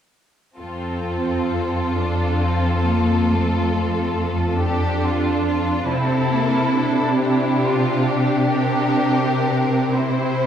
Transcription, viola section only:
0, 0, Header, 1, 2, 480
1, 0, Start_track
1, 0, Key_signature, -1, "major"
1, 0, Tempo, 943396
1, 295, Time_signature, 12, 3, 24, 8
1, 773, Tempo, 900901
1, 1733, Tempo, 860832
1, 3173, Tempo, 879765
1, 4613, Tempo, 941915
1, 5593, End_track
2, 0, Start_track
2, 0, Title_t, "Viola section"
2, 0, Program_c, 0, 48
2, 291, Note_on_c, 0, 60, 23
2, 993, Note_off_c, 0, 60, 0
2, 1015, Note_on_c, 0, 62, 27
2, 1252, Note_on_c, 0, 60, 29
2, 1257, Note_off_c, 0, 62, 0
2, 1487, Note_on_c, 0, 58, 27
2, 1494, Note_off_c, 0, 60, 0
2, 1724, Note_on_c, 0, 57, 26
2, 1728, Note_off_c, 0, 58, 0
2, 2445, Note_on_c, 0, 62, 34
2, 2449, Note_off_c, 0, 57, 0
2, 3164, Note_on_c, 0, 60, 40
2, 3167, Note_off_c, 0, 62, 0
2, 3403, Note_off_c, 0, 60, 0
2, 3403, Note_on_c, 0, 58, 43
2, 3639, Note_on_c, 0, 62, 37
2, 3644, Note_off_c, 0, 58, 0
2, 5321, Note_off_c, 0, 62, 0
2, 5322, Note_on_c, 0, 60, 32
2, 5593, Note_off_c, 0, 60, 0
2, 5593, End_track
0, 0, End_of_file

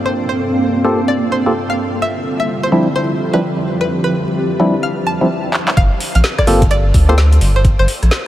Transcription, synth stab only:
0, 0, Header, 1, 2, 480
1, 0, Start_track
1, 0, Tempo, 468750
1, 147, Time_signature, 4, 2, 24, 8
1, 8468, End_track
2, 0, Start_track
2, 0, Title_t, "Synth stab"
2, 0, Program_c, 0, 62
2, 866, Note_on_c, 0, 67, 83
2, 866, Note_on_c, 0, 69, 99
2, 867, Note_on_c, 0, 58, 91
2, 867, Note_on_c, 0, 60, 82
2, 867, Note_on_c, 0, 65, 83
2, 1024, Note_off_c, 0, 58, 0
2, 1024, Note_off_c, 0, 60, 0
2, 1024, Note_off_c, 0, 65, 0
2, 1024, Note_off_c, 0, 67, 0
2, 1024, Note_off_c, 0, 69, 0
2, 1498, Note_on_c, 0, 58, 81
2, 1498, Note_on_c, 0, 60, 72
2, 1498, Note_on_c, 0, 65, 74
2, 1498, Note_on_c, 0, 67, 74
2, 1498, Note_on_c, 0, 69, 89
2, 1558, Note_off_c, 0, 60, 0
2, 1558, Note_off_c, 0, 65, 0
2, 1558, Note_off_c, 0, 67, 0
2, 1558, Note_off_c, 0, 69, 0
2, 1559, Note_off_c, 0, 58, 0
2, 2787, Note_on_c, 0, 53, 91
2, 2787, Note_on_c, 0, 55, 84
2, 2787, Note_on_c, 0, 60, 85
2, 2787, Note_on_c, 0, 64, 98
2, 2788, Note_on_c, 0, 62, 81
2, 2944, Note_off_c, 0, 53, 0
2, 2944, Note_off_c, 0, 60, 0
2, 2944, Note_off_c, 0, 64, 0
2, 2945, Note_off_c, 0, 55, 0
2, 2945, Note_off_c, 0, 62, 0
2, 3416, Note_on_c, 0, 53, 80
2, 3416, Note_on_c, 0, 60, 75
2, 3417, Note_on_c, 0, 55, 72
2, 3417, Note_on_c, 0, 62, 73
2, 3417, Note_on_c, 0, 64, 88
2, 3478, Note_off_c, 0, 53, 0
2, 3478, Note_off_c, 0, 55, 0
2, 3478, Note_off_c, 0, 60, 0
2, 3478, Note_off_c, 0, 62, 0
2, 3478, Note_off_c, 0, 64, 0
2, 4707, Note_on_c, 0, 53, 92
2, 4707, Note_on_c, 0, 60, 84
2, 4708, Note_on_c, 0, 55, 83
2, 4708, Note_on_c, 0, 62, 80
2, 4708, Note_on_c, 0, 64, 101
2, 4864, Note_off_c, 0, 53, 0
2, 4864, Note_off_c, 0, 60, 0
2, 4865, Note_off_c, 0, 55, 0
2, 4865, Note_off_c, 0, 62, 0
2, 4865, Note_off_c, 0, 64, 0
2, 5336, Note_on_c, 0, 60, 74
2, 5336, Note_on_c, 0, 62, 74
2, 5336, Note_on_c, 0, 64, 86
2, 5337, Note_on_c, 0, 53, 80
2, 5337, Note_on_c, 0, 55, 73
2, 5398, Note_off_c, 0, 53, 0
2, 5398, Note_off_c, 0, 55, 0
2, 5398, Note_off_c, 0, 60, 0
2, 5398, Note_off_c, 0, 62, 0
2, 5398, Note_off_c, 0, 64, 0
2, 6628, Note_on_c, 0, 58, 91
2, 6628, Note_on_c, 0, 65, 82
2, 6628, Note_on_c, 0, 67, 83
2, 6628, Note_on_c, 0, 69, 104
2, 6629, Note_on_c, 0, 60, 85
2, 6785, Note_off_c, 0, 58, 0
2, 6785, Note_off_c, 0, 60, 0
2, 6785, Note_off_c, 0, 65, 0
2, 6785, Note_off_c, 0, 67, 0
2, 6785, Note_off_c, 0, 69, 0
2, 7258, Note_on_c, 0, 58, 84
2, 7258, Note_on_c, 0, 69, 88
2, 7259, Note_on_c, 0, 60, 76
2, 7259, Note_on_c, 0, 65, 75
2, 7259, Note_on_c, 0, 67, 76
2, 7319, Note_off_c, 0, 58, 0
2, 7319, Note_off_c, 0, 60, 0
2, 7319, Note_off_c, 0, 65, 0
2, 7319, Note_off_c, 0, 67, 0
2, 7319, Note_off_c, 0, 69, 0
2, 8468, End_track
0, 0, End_of_file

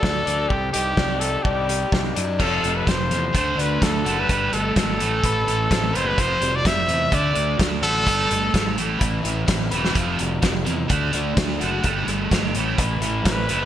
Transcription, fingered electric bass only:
0, 0, Header, 1, 2, 480
1, 0, Start_track
1, 0, Tempo, 472069
1, 512, Time_signature, 4, 2, 24, 8
1, 13880, End_track
2, 0, Start_track
2, 0, Title_t, "Fingered electric bass"
2, 0, Program_c, 0, 33
2, 28, Note_on_c, 0, 38, 85
2, 224, Note_off_c, 0, 38, 0
2, 273, Note_on_c, 0, 38, 76
2, 467, Note_off_c, 0, 38, 0
2, 513, Note_on_c, 0, 36, 83
2, 708, Note_off_c, 0, 36, 0
2, 764, Note_on_c, 0, 36, 84
2, 955, Note_off_c, 0, 36, 0
2, 990, Note_on_c, 0, 36, 84
2, 1381, Note_off_c, 0, 36, 0
2, 1474, Note_on_c, 0, 36, 86
2, 1864, Note_off_c, 0, 36, 0
2, 1954, Note_on_c, 0, 36, 78
2, 2150, Note_off_c, 0, 36, 0
2, 2202, Note_on_c, 0, 42, 77
2, 2439, Note_on_c, 0, 29, 84
2, 2454, Note_off_c, 0, 42, 0
2, 2657, Note_off_c, 0, 29, 0
2, 2679, Note_on_c, 0, 29, 76
2, 2897, Note_off_c, 0, 29, 0
2, 2919, Note_on_c, 0, 29, 82
2, 3137, Note_off_c, 0, 29, 0
2, 3161, Note_on_c, 0, 40, 76
2, 3378, Note_off_c, 0, 40, 0
2, 3399, Note_on_c, 0, 38, 84
2, 3617, Note_off_c, 0, 38, 0
2, 3637, Note_on_c, 0, 38, 77
2, 3856, Note_off_c, 0, 38, 0
2, 3880, Note_on_c, 0, 38, 82
2, 4098, Note_off_c, 0, 38, 0
2, 4133, Note_on_c, 0, 30, 78
2, 4345, Note_off_c, 0, 30, 0
2, 4368, Note_on_c, 0, 31, 88
2, 4583, Note_off_c, 0, 31, 0
2, 4609, Note_on_c, 0, 31, 81
2, 4823, Note_off_c, 0, 31, 0
2, 4845, Note_on_c, 0, 32, 91
2, 5061, Note_off_c, 0, 32, 0
2, 5086, Note_on_c, 0, 33, 81
2, 5302, Note_off_c, 0, 33, 0
2, 5328, Note_on_c, 0, 33, 84
2, 5543, Note_off_c, 0, 33, 0
2, 5570, Note_on_c, 0, 33, 79
2, 5784, Note_off_c, 0, 33, 0
2, 5808, Note_on_c, 0, 33, 88
2, 6023, Note_off_c, 0, 33, 0
2, 6042, Note_on_c, 0, 30, 79
2, 6260, Note_off_c, 0, 30, 0
2, 6291, Note_on_c, 0, 29, 90
2, 6504, Note_off_c, 0, 29, 0
2, 6520, Note_on_c, 0, 29, 84
2, 6738, Note_off_c, 0, 29, 0
2, 6764, Note_on_c, 0, 29, 92
2, 6980, Note_off_c, 0, 29, 0
2, 6997, Note_on_c, 0, 40, 81
2, 7216, Note_off_c, 0, 40, 0
2, 7243, Note_on_c, 0, 38, 83
2, 7460, Note_off_c, 0, 38, 0
2, 7486, Note_on_c, 0, 38, 84
2, 7701, Note_off_c, 0, 38, 0
2, 7726, Note_on_c, 0, 38, 84
2, 7941, Note_off_c, 0, 38, 0
2, 7951, Note_on_c, 0, 33, 79
2, 8173, Note_off_c, 0, 33, 0
2, 8206, Note_on_c, 0, 31, 86
2, 8421, Note_off_c, 0, 31, 0
2, 8449, Note_on_c, 0, 31, 80
2, 8663, Note_off_c, 0, 31, 0
2, 8684, Note_on_c, 0, 32, 81
2, 8900, Note_off_c, 0, 32, 0
2, 8928, Note_on_c, 0, 33, 83
2, 9142, Note_off_c, 0, 33, 0
2, 9160, Note_on_c, 0, 33, 82
2, 9378, Note_off_c, 0, 33, 0
2, 9402, Note_on_c, 0, 33, 81
2, 9618, Note_off_c, 0, 33, 0
2, 9641, Note_on_c, 0, 33, 87
2, 9858, Note_off_c, 0, 33, 0
2, 9877, Note_on_c, 0, 28, 79
2, 10096, Note_off_c, 0, 28, 0
2, 10121, Note_on_c, 0, 29, 87
2, 10338, Note_off_c, 0, 29, 0
2, 10379, Note_on_c, 0, 29, 78
2, 10587, Note_off_c, 0, 29, 0
2, 10610, Note_on_c, 0, 29, 85
2, 10822, Note_off_c, 0, 29, 0
2, 10851, Note_on_c, 0, 40, 85
2, 11063, Note_off_c, 0, 40, 0
2, 11090, Note_on_c, 0, 38, 83
2, 11302, Note_off_c, 0, 38, 0
2, 11332, Note_on_c, 0, 38, 76
2, 11543, Note_off_c, 0, 38, 0
2, 11561, Note_on_c, 0, 38, 86
2, 11777, Note_off_c, 0, 38, 0
2, 11814, Note_on_c, 0, 30, 80
2, 12024, Note_off_c, 0, 30, 0
2, 12044, Note_on_c, 0, 31, 88
2, 12258, Note_off_c, 0, 31, 0
2, 12275, Note_on_c, 0, 31, 79
2, 12493, Note_off_c, 0, 31, 0
2, 12519, Note_on_c, 0, 31, 85
2, 12735, Note_off_c, 0, 31, 0
2, 12761, Note_on_c, 0, 33, 82
2, 12976, Note_off_c, 0, 33, 0
2, 13003, Note_on_c, 0, 33, 85
2, 13217, Note_off_c, 0, 33, 0
2, 13228, Note_on_c, 0, 33, 83
2, 13448, Note_off_c, 0, 33, 0
2, 13479, Note_on_c, 0, 33, 89
2, 13694, Note_off_c, 0, 33, 0
2, 13709, Note_on_c, 0, 30, 85
2, 13880, Note_off_c, 0, 30, 0
2, 13880, End_track
0, 0, End_of_file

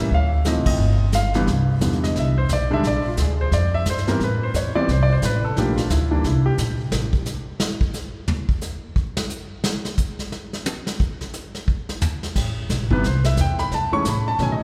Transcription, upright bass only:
0, 0, Header, 1, 3, 480
1, 0, Start_track
1, 0, Key_signature, 0, "major"
1, 0, Tempo, 339943
1, 160, Time_signature, 4, 2, 24, 8
1, 20658, End_track
2, 0, Start_track
2, 0, Title_t, "Upright bass"
2, 0, Program_c, 0, 32
2, 0, Note_on_c, 0, 45, 71
2, 143, Note_off_c, 0, 45, 0
2, 157, Note_on_c, 0, 38, 80
2, 755, Note_off_c, 0, 38, 0
2, 788, Note_on_c, 0, 36, 64
2, 937, Note_off_c, 0, 36, 0
2, 945, Note_on_c, 0, 33, 72
2, 1093, Note_off_c, 0, 33, 0
2, 1101, Note_on_c, 0, 31, 95
2, 2025, Note_off_c, 0, 31, 0
2, 2075, Note_on_c, 0, 36, 74
2, 2546, Note_off_c, 0, 36, 0
2, 2552, Note_on_c, 0, 40, 82
2, 3025, Note_off_c, 0, 40, 0
2, 3034, Note_on_c, 0, 36, 84
2, 3506, Note_off_c, 0, 36, 0
2, 3522, Note_on_c, 0, 35, 88
2, 3991, Note_off_c, 0, 35, 0
2, 3998, Note_on_c, 0, 34, 74
2, 4469, Note_off_c, 0, 34, 0
2, 4478, Note_on_c, 0, 38, 80
2, 4950, Note_off_c, 0, 38, 0
2, 4962, Note_on_c, 0, 41, 89
2, 5432, Note_off_c, 0, 41, 0
2, 5444, Note_on_c, 0, 43, 88
2, 5913, Note_off_c, 0, 43, 0
2, 5928, Note_on_c, 0, 45, 74
2, 6396, Note_off_c, 0, 45, 0
2, 6407, Note_on_c, 0, 40, 86
2, 6876, Note_off_c, 0, 40, 0
2, 6892, Note_on_c, 0, 36, 84
2, 7358, Note_off_c, 0, 36, 0
2, 7369, Note_on_c, 0, 33, 97
2, 7837, Note_off_c, 0, 33, 0
2, 7849, Note_on_c, 0, 34, 76
2, 8317, Note_off_c, 0, 34, 0
2, 8328, Note_on_c, 0, 38, 83
2, 8796, Note_off_c, 0, 38, 0
2, 8811, Note_on_c, 0, 36, 80
2, 9278, Note_off_c, 0, 36, 0
2, 9287, Note_on_c, 0, 34, 87
2, 9756, Note_off_c, 0, 34, 0
2, 9762, Note_on_c, 0, 33, 81
2, 10056, Note_off_c, 0, 33, 0
2, 17442, Note_on_c, 0, 33, 77
2, 17912, Note_off_c, 0, 33, 0
2, 17924, Note_on_c, 0, 35, 85
2, 18073, Note_off_c, 0, 35, 0
2, 18073, Note_on_c, 0, 33, 55
2, 18217, Note_off_c, 0, 33, 0
2, 18226, Note_on_c, 0, 31, 60
2, 18385, Note_off_c, 0, 31, 0
2, 18401, Note_on_c, 0, 36, 86
2, 18870, Note_off_c, 0, 36, 0
2, 18877, Note_on_c, 0, 40, 91
2, 19347, Note_off_c, 0, 40, 0
2, 19364, Note_on_c, 0, 42, 76
2, 19640, Note_off_c, 0, 42, 0
2, 19837, Note_on_c, 0, 45, 85
2, 20305, Note_off_c, 0, 45, 0
2, 20317, Note_on_c, 0, 47, 88
2, 20595, Note_off_c, 0, 47, 0
2, 20658, End_track
3, 0, Start_track
3, 0, Title_t, "Muted upright bass strokes"
3, 19651, Note_on_c, 9, 29, 41
3, 19793, Note_off_c, 9, 29, 0
3, 20609, Note_on_c, 9, 29, 39
3, 20658, Note_off_c, 9, 29, 0
3, 20658, End_track
0, 0, End_of_file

